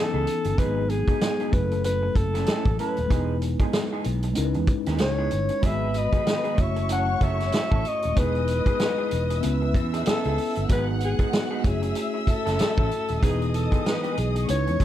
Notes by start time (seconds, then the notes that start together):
Already playing: E3 B3 C#4 D#4 A4 G#5
0.14 C#2 E3 B3 D#4 G#4
0.27 muted clean electric guitar stroke, closed hi-hat
0.44 G1, muted clean electric guitar stroke, closed hi-hat
0.57 G#1 F#3 G#3 B3 D#4 G#4 B4, kick, closed hi-hat
0.90 G#4, muted clean electric guitar stroke, closed hi-hat
1.08 F#3 B3 D#4 G#4, kick, closed hi-hat
1.21 muted clean electric guitar stroke, snare, closed hi-hat
1.40 F#3 B3 D#4 G#4, closed hi-hat
1.50 F#1 F#3 A3 C#4 E4 B4, muted clean electric guitar stroke, kick, closed hi-hat
1.55 G#4
1.62 A4
1.71 muted clean electric guitar stroke, closed hi-hat
1.84 B4, muted clean electric guitar stroke, closed hi-hat
2.03 muted clean electric guitar stroke
2.15 F#1 A4, kick, closed hi-hat
2.34 A3 C#4 E4 A4, snare, closed hi-hat
2.46 A3 C#4 E4 A4, muted fingered electric bass stroke, snare, closed hi-hat
2.65 A1, muted clean electric guitar stroke, kick, closed hi-hat
2.79 A3 C#4 E4 A4 B4, closed hi-hat
2.97 D#1, muted clean electric guitar stroke, closed hi-hat
3.07 E1 G#3 B3 D#4 E4, kick, closed hi-hat
3.11 D#4 G#4 B4
3.42 muted clean electric guitar stroke, closed hi-hat
3.60 G#3 B3 D#4 G#4, muted fingered electric bass stroke, kick, closed hi-hat
3.73 muted clean electric guitar stroke, snare, closed hi-hat
3.93 G#3 B3 D#4 G#4
4.04 B1, muted clean electric guitar stroke, closed hi-hat
4.23 muted clean electric guitar stroke, closed hi-hat
4.33 G#3 C#4 D#4 E4, closed hi-hat
4.37 C#2 A#4, muted clean electric guitar stroke
4.45 B4
4.54 E2, muted clean electric guitar stroke, closed hi-hat
4.67 kick, closed hi-hat
4.86 D#2 E3 B3 D#4 G#4, snare, closed hi-hat
4.98 C#2 C#5, muted clean electric guitar stroke, snare, closed hi-hat
5.18 E3 B3 D#4 G#4
5.31 G1, muted clean electric guitar stroke, closed hi-hat
5.49 muted clean electric guitar stroke, closed hi-hat
5.61 G#1 D#3 F#3 G#3 B3 D#4 F#4 G#4 B4 B5, kick, closed hi-hat
5.66 E5
5.94 D#5, muted clean electric guitar stroke, closed hi-hat
6.13 F#3 B3 D#4 G#4, muted fingered electric bass stroke, kick, closed hi-hat
6.26 muted clean electric guitar stroke, snare, closed hi-hat
6.44 F#3 B3 D#4 G#4, closed hi-hat
6.56 F#1 A3 C#4 E4 F#4 C#5 C#6, muted clean electric guitar stroke, kick, closed hi-hat
6.60 C#5 E5
6.76 muted clean electric guitar stroke, closed hi-hat
6.89 F#3 C#4 E4 A4 F#5, closed hi-hat
7.08 muted clean electric guitar stroke
7.21 F#1 F#3 C#4 E4 A4 E5, kick, closed hi-hat
7.40 muted clean electric guitar stroke, snare, closed hi-hat
7.52 muted clean electric guitar stroke, muted fingered electric bass stroke, snare, closed hi-hat
7.71 A1 F#3 C#4 E4 A4, kick
7.85 D#5, muted clean electric guitar stroke, closed hi-hat
8.02 D#1, muted clean electric guitar stroke, closed hi-hat
8.14 E1 E3 G#3 B3 D#4 E4 G#4 D#5 D#6, kick, closed hi-hat
8.18 B4
8.35 closed hi-hat
8.48 muted clean electric guitar stroke, closed hi-hat
8.66 E3 B3 D#4 G#4, muted fingered electric bass stroke, kick, closed hi-hat
8.80 muted clean electric guitar stroke, snare, closed hi-hat
8.98 E3 B3 D#4 G#4
9.11 E1, muted clean electric guitar stroke, closed hi-hat
9.30 muted clean electric guitar stroke, closed hi-hat
9.40 B3 C#4 E4 E5 E6, muted clean electric guitar stroke, closed hi-hat
9.45 C#2 B4
9.62 muted clean electric guitar stroke
9.74 E2, kick, closed hi-hat
9.94 E3 B3 D#4 G#4, closed hi-hat
10.06 A4, muted clean electric guitar stroke, muted fingered electric bass stroke, snare, closed hi-hat
10.24 C#2 E3 B3 D#4 G#4, closed hi-hat
10.38 muted clean electric guitar stroke, open hi-hat
10.55 G1, muted clean electric guitar stroke, closed hi-hat
10.68 G#1 F#3 G#3 B3 D#4 F#4 G#4 B4 F#5 F#6, kick, closed hi-hat
11.00 G#4, muted clean electric guitar stroke, closed hi-hat
11.19 F#3 B3 D#4 G#4, muted fingered electric bass stroke, kick, closed hi-hat
11.33 F#4, muted clean electric guitar stroke, snare, closed hi-hat
11.51 F#3 B3 D#4 G#4
11.62 F#1 A3 C#4 E4 F#4 E5 E6, kick, closed hi-hat
11.67 G#4 C#5
11.82 muted clean electric guitar stroke, closed hi-hat
11.95 muted clean electric guitar stroke, closed hi-hat
12.14 muted clean electric guitar stroke
12.24 G#4, muted fingered electric bass stroke, kick, closed hi-hat
12.30 A4
12.45 F#1 A3 C#4 E4 A4, snare, closed hi-hat
12.59 muted fingered electric bass stroke, snare, closed hi-hat
12.78 A1 A3 C#4 E4 A4, kick
12.91 muted clean electric guitar stroke, closed hi-hat
13.08 D#1, muted clean electric guitar stroke, closed hi-hat
13.21 E1 E3 G#3 B3 D#4 E4 G#4 D#5 D#6, kick, closed hi-hat
13.25 B4
13.42 closed hi-hat
13.53 A4, muted clean electric guitar stroke, closed hi-hat
13.72 G#3 B3 D#4 G#4, muted fingered electric bass stroke, kick, closed hi-hat
13.85 B4, muted clean electric guitar stroke, snare, closed hi-hat
14.03 G#3 B3 D#4 G#4, closed hi-hat
14.17 B1 G#4, muted clean electric guitar stroke, closed hi-hat
14.35 muted clean electric guitar stroke, closed hi-hat
14.47 C#2 G#3 C#4 D#4 E4 C#5 C#6, muted clean electric guitar stroke, closed hi-hat
14.51 B4
14.67 E2, muted clean electric guitar stroke, closed hi-hat
14.80 D#2 E3 B3 D#4 G#4, kick, closed hi-hat